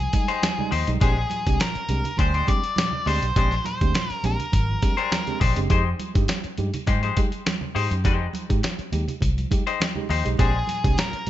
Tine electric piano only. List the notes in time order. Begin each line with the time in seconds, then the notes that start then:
0.00 F3
0.14 G3 G#3 D#4
0.59 G3 G#3 D#4
0.72 F3
0.87 G3 G#3 D#4
1.02 G#3 C4 D4 G4
1.31 A#2 F3
1.47 G#3 C4 D4 G4
1.61 A#2 F3
1.89 G#3 C4 D4 G4
2.19 D4 G4
2.35 A#2 F3
2.48 G#3 C4 D4 G4
2.78 A#2 F3
3.06 G#3 C4 D4 G4
3.36 G#3 C4 D4 G4
3.66 A#2 F3
3.81 G#3 C4 D4 G4
3.95 A#2 F3
4.24 G#3 C4 D4 G4
4.40 D4 G4
4.54 D4 G4
4.70 A#2 F3
4.83 G#3 C4 D4 G4
5.27 G#3 C4 D4 G4
5.41 A#2 F3
5.56 G#3 C4 D4 G4
5.70 G#3 D#4 G4
6.00 F3
6.15 G#3 D#4 G4
6.29 F3
6.58 G#3 D#4 G4
6.74 D#4 G4
6.88 D#4 G4
7.03 F3
7.17 G#3 D#4 G4
7.46 F3
7.75 G#3 D#4 G4
7.92 D#4 G4
8.04 G#3 D#4 G4
8.34 F3
8.49 G#3 D#4 G4
8.63 F3
8.92 G#3 D#4 G4
9.08 D#4 G4
9.22 D#4 G4
9.37 F3
9.50 G#3 D#4 G4
9.95 G#3 D#4 G4
10.09 F3
10.25 G#3 D#4 G4
10.38 G#3 C4 D4 G4
10.68 A#2 F3
10.84 G#3 C4 D4 G4
10.98 A#2 F3